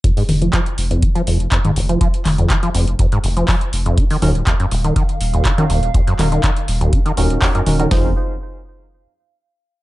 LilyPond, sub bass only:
\new Staff \with { instrumentName = "Sub bass" } { \clef bass \time 4/4 \key f \phrygian \tempo 4 = 122 r8 f,,8 r8 f,,8 r8 f,,8 r8 f,,8 | r8 f,,8 r8 f,,8 r8 f,,8 r8 f,,8 | r8 ees,,8 r8 ees,,8 r8 ees,,8 r8 ees,,8 | r8 ees,,8 r8 ees,,8 r8 ees,,8 r8 ees,,8 |
f,,8 r2. r8 | }